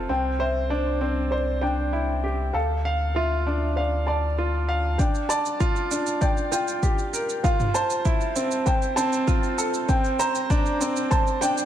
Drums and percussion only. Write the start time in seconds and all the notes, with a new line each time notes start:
4.99 kick, shaker
5.15 shaker
5.30 shaker
5.46 shaker
5.61 kick, shaker
5.76 shaker
5.91 shaker
6.07 shaker
6.22 kick, shaker
6.37 shaker
6.53 shaker
6.68 shaker
6.83 kick, shaker
6.99 shaker
7.14 shaker
7.29 shaker
7.44 kick, shaker
7.60 mid tom, shaker
7.75 shaker
7.90 shaker
8.05 kick, shaker
8.21 shaker
8.36 shaker
8.51 shaker
8.67 kick, shaker
8.82 shaker
8.97 shaker
9.13 shaker
9.28 kick, shaker
9.43 shaker
9.59 shaker
9.74 shaker
9.89 kick, shaker
10.04 shaker
10.20 shaker
10.35 shaker
10.50 kick, shaker
10.66 shaker
10.81 shaker
10.96 shaker
11.12 kick, shaker
11.27 shaker
11.42 shaker
11.58 shaker